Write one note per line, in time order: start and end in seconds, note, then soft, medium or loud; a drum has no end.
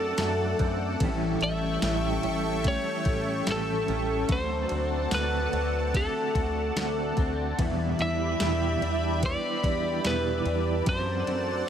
0.00 0.13 F#2 loud
0.00 1.00 F#3 medium
0.00 0.18 A3 medium
0.00 0.18 C4 soft
0.00 0.59 C4 medium
0.00 0.20 D4 medium
0.00 1.09 F#4 medium
0.00 0.18 A4 medium
0.00 0.57 A4 medium
0.00 7.54 A4 medium
0.00 0.97 D5 medium
0.00 0.97 F#5 medium
0.00 0.98 A5 medium
0.18 0.54 F#2 loud
0.18 0.59 F#3 medium
0.18 1.85 A3 medium
0.18 0.60 C4 medium
0.18 0.61 D4 medium
0.18 snare loud
0.18 ride medium
0.18 tambourine medium
0.22 0.58 A4 medium
0.59 0.96 F#2 loud
0.59 1.09 C4 medium
0.59 1.02 D4 medium
0.59 1.01 A4 medium
0.59 kick medium
0.59 ride soft
0.65 1.02 C4 medium
1.00 1.37 A1 loud
1.00 1.42 A2 medium
1.00 1.42 E3 medium
1.00 1.43 G3 medium
1.00 1.43 C#4 loud
1.00 1.40 G4 loud
1.00 4.26 E5 medium
1.00 4.26 G5 medium
1.00 4.26 C#6 medium
1.00 kick loud
1.00 ride medium
1.41 1.78 A1 loud
1.41 1.84 C#4 soft
1.41 2.70 E5 loud
1.41 ride soft
1.47 1.83 G3 soft
1.82 2.19 A1 loud
1.82 2.24 A2 medium
1.82 2.24 E3 medium
1.82 2.25 G3 medium
1.82 2.25 C#4 medium
1.82 snare loud
1.82 ride medium
1.82 tambourine medium
1.86 2.22 G4 medium
2.23 2.78 A1 loud
2.23 2.66 C#4 soft
2.23 2.65 G4 soft
2.23 ride soft
2.28 2.65 G3 soft
2.64 3.05 E3 medium
2.64 3.07 G3 medium
2.64 3.47 A3 medium
2.64 3.07 C#4 medium
2.64 kick medium
2.64 ride medium
2.68 3.04 G4 medium
2.68 3.45 C#5 loud
3.05 3.42 A1 medium
3.05 3.48 C#4 soft
3.05 3.47 G4 medium
3.05 kick medium
3.05 ride soft
3.10 3.47 G3 soft
3.46 3.83 A1 loud
3.46 3.88 A2 medium
3.46 3.88 E3 medium
3.46 3.89 G3 medium
3.46 5.94 A3 medium
3.46 3.89 C#4 medium
3.46 3.86 G4 medium
3.46 snare loud
3.46 ride medium
3.46 tambourine medium
3.52 4.28 A4 medium
3.88 4.25 A1 loud
3.88 4.31 C#4 soft
3.88 4.29 G4 medium
3.88 ride soft
3.93 4.29 G3 soft
4.29 4.65 D2 loud
4.29 4.70 D3 medium
4.29 7.58 F#3 medium
4.29 4.71 A3 medium
4.29 4.71 C4 medium
4.29 4.68 F#4 medium
4.29 5.14 C5 medium
4.29 11.69 D5 medium
4.29 7.55 F#5 medium
4.29 7.55 A5 medium
4.29 kick loud
4.29 ride medium
4.69 5.07 D2 loud
4.69 5.12 C4 soft
4.69 5.11 F#4 medium
4.69 ride soft
4.74 5.11 A3 soft
5.11 5.48 D2 loud
5.11 5.52 D3 medium
5.11 5.53 A3 medium
5.11 5.54 C4 medium
5.11 5.98 B4 medium
5.11 snare loud
5.11 ride medium
5.11 tambourine medium
5.15 5.51 F#4 medium
5.52 6.07 D2 loud
5.52 5.95 C4 soft
5.52 5.93 F#4 soft
5.52 ride soft
5.58 5.94 A3 soft
5.93 6.35 D3 medium
5.93 6.36 A3 medium
5.93 6.37 C4 medium
5.93 7.14 A4 medium
5.93 kick medium
5.93 ride medium
5.99 6.33 F#4 medium
6.34 6.71 D2 loud
6.34 6.77 C4 medium
6.34 6.76 F#4 soft
6.34 kick medium
6.34 ride soft
6.40 6.76 A3 soft
6.76 7.12 D2 loud
6.76 7.17 D3 medium
6.76 7.18 A3 medium
6.76 7.18 C4 medium
6.76 7.15 F#4 medium
6.76 snare loud
6.76 ride medium
6.76 tambourine medium
7.16 7.54 D2 loud
7.16 7.59 C4 medium
7.16 7.58 F#4 medium
7.16 kick medium
7.16 ride soft
7.22 7.60 A3 soft
7.57 7.99 E2 medium
7.57 7.95 E2 loud
7.57 7.99 B2 medium
7.57 8.00 E3 loud
7.57 8.00 G3 medium
7.57 8.00 D4 medium
7.57 10.83 G4 medium
7.57 10.83 E5 medium
7.57 9.16 E5 medium
7.57 10.83 B5 medium
7.57 kick loud
7.57 ride medium
7.61 7.98 E4 loud
7.99 8.35 E2 loud
7.99 8.41 D4 soft
7.99 8.40 E4 soft
7.99 9.25 E5 loud
7.99 ride soft
8.03 8.41 E3 soft
8.03 8.41 G3 soft
8.40 8.81 E2 medium
8.40 8.77 E2 loud
8.40 8.82 B2 medium
8.40 8.82 E3 medium
8.40 8.82 G3 medium
8.40 8.82 D4 medium
8.40 8.79 E4 medium
8.40 9.63 G4 medium
8.40 snare loud
8.40 ride medium
8.40 tambourine medium
8.80 9.36 E2 medium
8.80 9.23 D4 soft
8.80 9.22 E4 soft
8.80 ride soft
8.85 9.21 E3 soft
8.85 9.23 G3 soft
9.22 9.64 E3 medium
9.22 9.64 G3 medium
9.22 10.04 B3 medium
9.22 10.09 D5 loud
9.22 kick medium
9.22 ride medium
9.27 9.62 E4 medium
9.63 10.00 E2 loud
9.63 10.05 G3 soft
9.63 10.05 D4 medium
9.63 10.04 E4 medium
9.63 10.95 G4 medium
9.63 kick medium
9.63 ride soft
9.68 10.04 E3 soft
10.04 10.45 E2 medium
10.04 10.41 E2 loud
10.04 10.46 B2 medium
10.04 10.46 E3 medium
10.04 10.46 G3 medium
10.04 10.95 B3 medium
10.04 10.46 D4 medium
10.04 10.44 E4 medium
10.04 10.84 B4 medium
10.04 snare loud
10.04 ride medium
10.04 tambourine medium
10.45 10.82 E2 loud
10.45 10.86 G3 soft
10.45 10.87 D4 soft
10.45 10.87 E4 medium
10.45 ride soft
10.50 10.85 E3 soft
10.85 11.23 F#2 medium
10.85 11.27 F#3 medium
10.85 11.28 C4 medium
10.85 11.28 D4 medium
10.85 11.69 A4 medium
10.85 11.24 A4 medium
10.85 11.69 C5 medium
10.85 11.69 D5 loud
10.85 11.69 F#5 medium
10.85 11.69 A5 medium
10.85 kick loud
10.85 ride medium
11.26 11.64 F#2 loud
11.26 11.69 D4 medium
11.26 11.68 A4 medium
11.26 ride soft
11.31 11.68 C4 soft